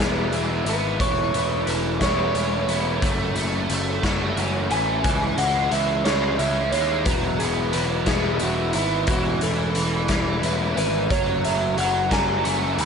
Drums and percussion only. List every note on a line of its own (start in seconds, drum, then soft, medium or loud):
0.00 snare medium
0.33 closed hi-hat medium
0.66 closed hi-hat medium
1.00 kick loud
1.00 closed hi-hat medium
1.34 closed hi-hat medium
1.67 closed hi-hat medium
2.01 kick medium
2.01 snare loud
2.01 closed hi-hat medium
2.35 closed hi-hat medium
2.69 closed hi-hat medium
3.02 kick loud
3.02 closed hi-hat medium
3.36 closed hi-hat medium
3.70 closed hi-hat medium
4.03 kick medium
4.03 snare medium
4.03 closed hi-hat medium
4.37 closed hi-hat medium
4.71 closed hi-hat medium
5.04 kick loud
5.04 closed hi-hat medium
5.38 closed hi-hat medium
5.72 closed hi-hat medium
6.05 snare loud
6.05 closed hi-hat medium
6.39 closed hi-hat medium
6.72 closed hi-hat medium
7.06 kick loud
7.06 closed hi-hat medium
7.40 closed hi-hat medium
7.73 closed hi-hat medium
8.06 kick medium
8.06 snare medium
8.06 closed hi-hat medium
8.39 closed hi-hat medium
8.73 closed hi-hat medium
9.07 kick loud
9.07 closed hi-hat medium
9.41 closed hi-hat medium
9.75 closed hi-hat medium
10.08 kick medium
10.08 snare loud
10.08 closed hi-hat medium
10.43 closed hi-hat medium
10.77 closed hi-hat medium
11.10 kick loud
11.10 closed hi-hat medium
11.45 closed hi-hat medium
11.78 closed hi-hat medium
12.11 kick medium
12.11 snare loud
12.11 closed hi-hat medium
12.45 closed hi-hat medium
12.78 closed hi-hat medium